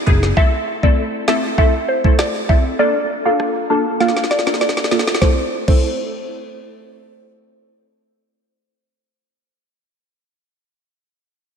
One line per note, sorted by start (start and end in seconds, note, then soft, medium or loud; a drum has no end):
0.00 downlifter medium
0.06 0.33 F#1 medium
0.06 0.34 B3 medium
0.06 0.35 D#4 medium
0.06 0.35 E4 medium
0.06 0.35 G#4 medium
0.06 kick medium
0.06 closed hi-hat medium
0.23 snare medium
0.37 0.51 A3 medium
0.37 0.51 C4 medium
0.37 0.51 E4 medium
0.37 0.51 A4 loud
0.37 0.49 E5 loud
0.37 kick loud
0.83 1.24 A3 medium
0.83 1.24 C4 medium
0.83 1.24 E4 medium
0.83 1.25 A4 medium
0.83 1.06 D5 medium
0.83 kick loud
1.28 1.56 A3 medium
1.28 1.56 C4 medium
1.28 1.56 E4 medium
1.28 1.56 A4 medium
1.28 1.51 E5 medium
1.28 cross-stick medium
1.28 snare loud
1.58 1.72 A3 medium
1.58 1.72 C4 medium
1.58 1.73 E4 medium
1.58 1.73 A4 loud
1.58 1.70 E5 medium
1.58 kick medium
1.89 2.01 C5 medium
2.04 2.45 A3 medium
2.04 2.46 C4 medium
2.04 2.46 E4 medium
2.04 2.46 A4 medium
2.04 kick medium
2.19 2.31 D5 medium
2.19 cross-stick medium
2.19 snare loud
2.49 2.77 A3 medium
2.49 2.77 C4 medium
2.49 2.77 E4 medium
2.49 2.77 A4 medium
2.49 2.61 E5 medium
2.49 kick medium
2.79 2.94 A#3 medium
2.79 2.94 D4 medium
2.79 2.94 F4 medium
2.79 2.94 A4 loud
2.79 2.91 D5 loud
3.25 3.67 A#3 medium
3.25 3.67 D4 medium
3.25 3.67 F4 medium
3.25 3.67 A4 medium
3.25 3.48 F5 medium
3.40 cross-stick medium
3.70 3.98 A#3 medium
3.70 3.98 D4 medium
3.70 3.98 F4 medium
3.70 3.98 A4 medium
3.70 3.93 A5 medium
4.00 4.15 A#3 medium
4.00 4.15 D4 medium
4.00 4.15 F4 medium
4.00 4.15 A4 loud
4.00 4.13 F5 medium
4.00 snare medium
4.08 snare soft
4.17 snare medium
4.24 snare medium
4.31 4.43 D5 medium
4.31 snare medium
4.39 snare medium
4.46 4.88 A#3 medium
4.46 4.88 D4 medium
4.46 4.88 F4 medium
4.46 4.88 A4 medium
4.46 snare medium
4.54 snare medium
4.61 5.05 D5 medium
4.61 snare medium
4.69 snare medium
4.77 snare medium
4.84 snare medium
4.91 5.19 A#3 medium
4.91 5.19 D4 medium
4.91 5.19 F4 medium
4.91 5.20 A4 medium
4.91 snare medium
4.99 snare medium
5.07 snare medium
5.15 snare medium
5.21 5.39 A3 medium
5.21 5.39 C4 medium
5.21 5.39 E4 medium
5.21 5.40 A4 medium
5.21 5.39 C5 medium
5.21 kick loud
5.21 snare medium
5.68 9.10 A3 medium
5.68 9.10 C4 medium
5.68 9.10 E4 medium
5.68 9.10 A4 medium
5.68 6.99 C5 medium
5.68 kick loud
5.68 crash medium